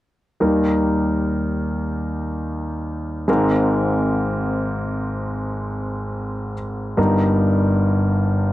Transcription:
0.40 3.24 D#2 soft
0.40 3.24 D#3 soft
0.40 3.24 G3 soft
0.40 3.24 D#4 soft
0.40 3.25 A#4 soft
3.28 6.53 G#1 soft
3.28 6.53 G#2 soft
3.28 6.53 G#3 soft
3.28 6.53 C4 soft
3.28 6.54 A#4 medium
6.97 8.53 G1 soft
6.97 8.53 G2 soft
6.97 8.53 G3 soft
6.97 8.53 D#4 soft
6.97 8.53 A#4 soft

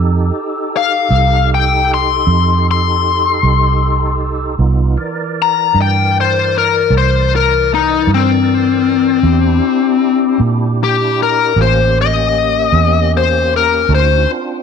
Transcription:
0.00 0.30 F2 medium
0.00 4.56 D#4 medium
0.00 4.55 G4 medium
0.00 4.56 A4 medium
0.77 1.50 F5 medium
1.10 2.23 C2 loud
1.55 1.90 G5 medium
1.94 2.66 C6 medium
2.27 3.39 F2 medium
2.71 4.97 C6 medium
3.43 4.55 C2 medium
4.59 4.95 C2 medium
4.59 4.98 B3 medium
4.59 4.98 D#4 medium
4.59 4.98 F4 medium
4.97 9.20 E3 medium
4.97 9.20 A#4 medium
4.97 9.20 D5 medium
5.42 5.77 A#5 medium
5.75 6.87 G2 medium
5.82 6.16 G5 medium
6.20 6.55 C5 medium
6.58 6.93 A#4 medium
6.90 8.03 C2 medium
6.98 7.32 C5 medium
7.36 7.71 A#4 medium
7.74 8.09 D#4 medium
8.07 9.20 G2 medium
8.14 10.40 C4 medium
9.23 9.59 E2 medium
9.23 11.54 D4 medium
9.23 11.54 E4 medium
9.23 11.54 G4 medium
10.40 11.52 A#2 medium
10.84 11.19 G4 medium
11.23 11.58 A#4 medium
11.56 12.69 A1 medium
11.56 13.87 A#3 medium
11.56 13.87 C#4 medium
11.56 13.87 G4 medium
11.62 11.97 C5 medium
12.01 13.11 D#5 medium
12.72 13.85 E2 medium
13.17 13.52 C5 medium
13.56 13.91 A#4 medium
13.89 14.25 D2 medium
13.89 14.28 C#4 medium
13.89 14.28 D#4 medium
13.89 14.28 F#4 medium
13.95 14.30 C5 medium
14.29 14.63 C4 medium
14.29 14.63 D4 medium
14.29 14.63 F4 medium

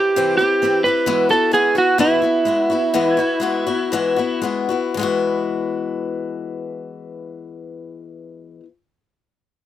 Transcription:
0.00 0.16 C4 soft
0.00 0.16 E4 soft
0.00 0.15 G4 medium
0.16 0.39 C3 medium
0.16 0.39 E3 medium
0.16 0.40 C4 medium
0.16 0.39 E4 medium
0.16 0.38 G4 medium
0.39 0.62 C4 soft
0.39 0.63 E4 medium
0.39 0.62 G4 medium
0.62 0.85 E3 medium
0.62 0.85 C4 medium
0.62 0.85 E4 medium
0.62 0.84 G4 medium
0.84 1.07 C4 soft
0.84 1.06 E4 medium
0.84 1.07 G4 medium
0.84 1.30 B4 loud
1.06 1.30 E3 medium
1.06 1.30 G#3 medium
1.06 1.30 B3 medium
1.06 1.30 E4 medium
1.06 1.28 F#4 medium
1.29 1.52 B3 medium
1.29 1.53 E4 medium
1.29 1.53 F#4 medium
1.29 1.52 A4 loud
1.51 1.75 G#3 medium
1.51 1.76 B3 medium
1.51 1.75 E4 medium
1.51 1.74 F#4 medium
1.51 1.77 G#4 loud
1.75 1.98 B3 soft
1.75 1.98 E4 medium
1.75 1.99 F#4 medium
1.98 2.22 E3 medium
1.98 2.22 G#3 medium
1.98 2.23 B3 loud
1.98 2.22 E4 loud
1.98 2.21 F#4 medium
2.22 2.45 B3 soft
2.22 2.46 E4 medium
2.22 2.46 F#4 medium
2.45 2.69 G#3 medium
2.45 2.70 B3 medium
2.45 2.70 E4 medium
2.45 2.68 F#4 medium
2.70 2.93 B3 soft
2.70 2.94 E4 medium
2.70 2.94 F#4 medium
2.94 3.18 E3 medium
2.94 3.18 G#3 loud
2.94 3.18 B3 medium
2.94 3.17 E4 medium
2.94 3.16 F#4 loud
3.17 3.40 B3 medium
3.17 3.41 E4 medium
3.17 3.42 F#4 medium
3.40 3.66 G#3 medium
3.40 3.67 B3 medium
3.40 3.66 E4 medium
3.40 3.65 F#4 medium
3.67 3.92 B3 medium
3.67 3.92 E4 medium
3.67 3.92 F#4 medium
3.92 4.17 E3 medium
3.92 4.18 G#3 medium
3.92 4.18 B3 medium
3.92 4.17 E4 loud
3.92 4.15 F#4 medium
4.16 4.42 B3 medium
4.16 4.43 E4 medium
4.16 4.43 F#4 medium
4.42 4.69 G#3 medium
4.42 4.70 B3 medium
4.42 4.69 E4 medium
4.42 4.67 F#4 medium
4.69 4.97 B3 soft
4.69 4.97 E4 medium
4.69 4.96 F#4 medium
4.94 8.60 E3 medium
4.94 8.63 G#3 medium
4.99 8.65 B3 medium
4.99 8.67 E4 medium
4.99 8.68 F#4 loud

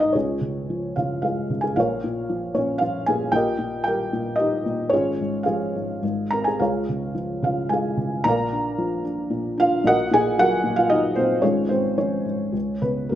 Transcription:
0.00 0.10 G#1 medium
0.00 0.13 G#2 medium
0.00 0.03 D#4 medium
0.00 0.15 D#4 medium
0.00 0.16 D#5 medium
0.13 1.73 C#2 medium
0.13 0.94 C#4 medium
0.13 0.94 F4 medium
0.13 0.94 G#4 soft
0.13 0.92 C#5 medium
0.41 0.95 C#3 soft
0.70 1.74 F3 medium
0.96 1.49 C#3 medium
0.96 1.23 F4 medium
0.96 1.20 F5 medium
1.22 1.75 G#3 soft
1.22 1.62 F4 medium
1.22 1.61 G#4 medium
1.22 1.64 F5 medium
1.50 1.76 C#3 soft
1.61 1.76 G#4 medium
1.61 1.76 G#5 medium
1.76 3.29 A#1 medium
1.76 2.02 A#2 medium
1.76 2.52 A#4 medium
1.76 2.53 C#5 medium
1.76 2.57 F5 medium
1.80 2.53 F4 medium
2.04 2.53 A#2 medium
2.30 2.80 F3 medium
2.55 3.07 A#2 medium
2.55 2.81 C#4 medium
2.55 2.82 C#5 medium
2.78 3.31 F3 medium
2.78 3.04 F5 medium
2.82 3.06 F4 medium
3.06 3.31 A#2 medium
3.06 3.33 G#4 medium
3.06 3.33 G#5 medium
3.32 4.87 A#1 medium
3.32 3.57 A#2 medium
3.32 3.83 D#5 medium
3.32 3.81 G5 loud
3.36 3.83 G4 medium
3.36 3.83 A#4 medium
3.59 4.11 A#2 medium
3.84 4.38 G3 medium
3.84 4.36 G4 medium
3.84 4.36 A#4 medium
3.84 4.39 G5 loud
4.13 4.64 A#2 medium
4.36 4.91 G3 medium
4.36 4.88 D#4 medium
4.36 4.88 G4 medium
4.36 4.92 D#5 medium
4.66 4.91 A#2 medium
4.89 5.99 G#1 medium
4.89 5.19 G#2 medium
4.89 5.43 C#4 medium
4.89 5.43 G#4 medium
4.89 5.41 C#5 loud
4.94 5.43 F4 medium
5.20 5.74 G#2 medium
5.43 6.28 F4 medium
5.43 6.28 G#4 medium
5.43 6.26 F5 medium
5.48 6.02 F3 medium
5.75 6.01 G#2 medium
6.02 6.57 G#1 medium
6.02 6.59 G#2 medium
6.31 6.60 C4 soft
6.31 6.46 A#4 medium
6.31 6.44 A#5 medium
6.44 6.60 G#4 medium
6.44 6.60 G#5 medium
6.60 8.21 C#2 medium
6.60 7.13 F4 medium
6.60 7.13 G#4 medium
6.60 7.13 C#5 medium
6.60 7.12 F5 medium
6.89 7.41 C#3 soft
7.15 8.22 F3 medium
7.42 7.96 C#3 medium
7.42 7.70 F4 medium
7.42 7.69 F5 medium
7.69 8.24 G#3 medium
7.69 8.23 F5 medium
7.69 8.27 G#5 medium
7.74 8.23 G#4 medium
7.97 8.24 C#3 medium
8.24 9.81 A#1 medium
8.24 9.29 A#2 medium
8.24 9.00 A#5 loud
8.28 9.03 A#4 medium
8.28 9.03 D5 medium
8.28 9.03 F5 medium
8.52 9.03 D4 medium
8.78 9.81 F3 medium
9.05 9.56 D4 medium
9.30 9.83 A#2 medium
9.57 9.84 D4 medium
9.57 9.84 F4 medium
9.57 9.84 F5 loud
9.84 11.38 A#1 medium
9.84 10.10 A#2 medium
9.84 10.11 F#4 medium
9.84 10.11 A#4 medium
9.84 10.11 D#5 medium
9.84 10.11 F#5 loud
10.11 10.62 A#2 medium
10.11 10.37 G#4 medium
10.11 10.37 G#5 loud
10.39 10.88 F#3 medium
10.39 10.75 F#4 medium
10.39 10.75 A#4 medium
10.39 10.75 F#5 loud
10.64 11.16 A#2 medium
10.76 10.90 F4 medium
10.76 10.90 F5 loud
10.90 11.41 F#3 medium
10.90 11.15 D#4 medium
10.90 11.17 D#5 loud
11.16 11.42 A#2 medium
11.16 11.42 C4 medium
11.16 11.43 C5 loud
11.42 12.51 G#1 medium
11.42 11.69 G#2 medium
11.42 11.68 C#4 medium
11.42 11.69 F4 medium
11.42 11.68 G#4 medium
11.42 11.70 C#5 medium
11.69 12.24 G#2 medium
11.69 11.96 C4 medium
11.69 11.95 C5 medium
11.98 12.53 F3 medium
11.98 12.80 C#4 medium
11.98 12.80 F4 medium
11.98 12.80 C#5 medium
12.25 12.53 G#2 medium
12.53 13.09 C#2 medium
12.82 13.10 C#3 soft
12.82 13.10 B3 medium
12.82 13.12 B4 medium
13.09 13.15 F#1 soft
13.09 13.15 F#2 soft
13.09 13.15 A#3 medium
13.09 13.15 C#4 soft
13.09 13.15 A#4 medium

